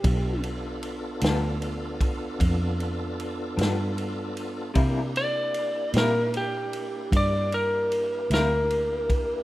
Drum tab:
RD |xxxxxxxxxxxx|xxxxxxxxxxxx|
SD |---o-----o--|---o-----o--|
BD |o----oo-----|o-----o----o|